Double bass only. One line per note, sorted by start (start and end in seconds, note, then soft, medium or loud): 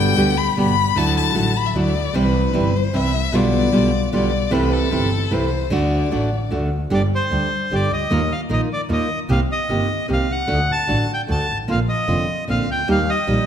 0.00 0.15 G1 medium
0.17 0.54 D2 soft
0.56 0.94 G1 soft
0.95 1.33 D2 medium
1.35 1.73 A1 soft
1.74 2.13 D2 soft
2.14 2.52 C2 medium
2.54 2.92 G1 soft
2.95 3.32 C2 soft
3.34 3.72 B1 medium
3.74 4.12 B1 soft
4.13 4.51 B1 medium
4.52 4.90 C2 medium
4.93 5.30 G1 medium
5.33 5.71 C2 soft
5.72 6.10 D2 medium
6.13 6.50 A1 soft
6.52 6.90 D2 soft
6.91 7.08 G1 medium
7.32 7.49 D2 soft
7.71 7.88 G1 medium
7.91 8.10 C#2 soft
8.10 8.27 D#2 medium
8.50 8.67 A#1 medium
8.90 9.07 D#2 medium
9.29 9.47 C2 medium
9.70 9.87 G1 medium
10.10 10.27 C2 medium
10.30 10.50 C2 soft
10.50 10.67 D2 medium
10.90 11.06 A1 medium
11.30 11.46 D2 soft
11.50 11.69 G#1 soft
11.70 11.86 A#1 medium
12.09 12.26 F1 medium
12.49 12.65 A#1 medium
12.68 12.87 C#2 soft
12.88 13.05 D#2 medium
13.28 13.45 A#1 medium